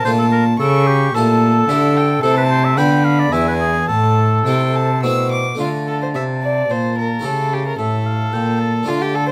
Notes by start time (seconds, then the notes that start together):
Already playing: A5
0.05 A#2 A3 D4 F4 C5
0.19 A4
0.32 A#4
0.60 C#3 A4 C#6
0.87 G4
1.14 A#2 A3 E4 G4 A4 A5
1.68 D3 A3 E4 G4 E5
1.97 G5
2.22 C3 A3 E4 A4 A5
2.37 B4
2.50 C5
2.64 E5
2.77 D3 B3 D4 F4 G5 B5
3.05 F5
3.20 D5
3.32 E2 B3 D4 E4 E5 G#5
3.48 B4
3.60 G#4
3.88 A2 A4 A5
4.46 C3 A3 C4 E4 G5
4.76 A5
5.03 B2 A3 C4 E4 E6
5.32 D6
5.55 A3 D4 F4
5.60 D3 F4 A5
5.88 A4
6.02 C5
6.15 C3 E5
6.43 D5
6.70 A#2 C5
6.98 A#4
7.19 A3 E4 G4
7.24 C#3 A4
7.54 G4
7.68 A#4
7.79 A2 A4 E5
8.06 F5
8.33 A#2 G5
8.61 A5
8.83 A3 D4 F4 A5
8.87 D3 F4
9.02 G4
9.15 A4
9.29 C5